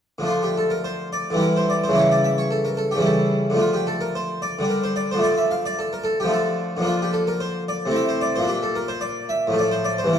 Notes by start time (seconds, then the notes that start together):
0.18 D3 F3 A3
0.25 D4 F4
0.43 G4
0.57 A4
0.70 A#4
0.84 C5
1.13 D5
1.30 D3 E3
1.34 G3 E4
1.41 A#4
1.56 C5
1.70 D5
1.84 C5
1.88 C#3 E3 G3
1.93 E4
1.98 C#5
2.11 D5
2.24 E5
2.38 C#5
2.51 A4
2.65 A#4
2.77 A4
2.91 G4
2.95 C#3 E3 G3
3.01 E4
3.05 A4
3.50 D3 F3
3.54 A3 D4
3.61 F4
3.73 G4
3.87 A4
4.01 A#4
4.15 C5
4.42 D5
4.59 D3 G3
4.63 D4
4.69 A#4
4.84 C5
4.96 D5
5.11 D3 C5
5.16 F3 A3 D4
5.24 D5
5.38 E5
5.51 F5
5.66 D5
5.79 A4
5.93 A#4
6.04 A4
6.20 D3 G4
6.25 F3 A3
6.29 D4
6.33 A4
6.77 D3 F3
6.81 A#3 D4
6.87 F4
7.02 G4
7.13 A4
7.27 A#4
7.40 C5
7.68 D5
7.86 C3 A3
7.90 C4 E4
7.96 E5
8.09 C5
8.21 D5
8.36 A#2 A#3 C5
8.42 D4
8.48 G4
8.63 A4
8.75 A#4
8.88 C5
9.01 D5
9.29 E5
9.47 A2 F3
9.52 A3 A4
9.59 D5
9.71 C5
9.84 D5
9.98 C5
10.03 G2 E3 A#3
10.13 E4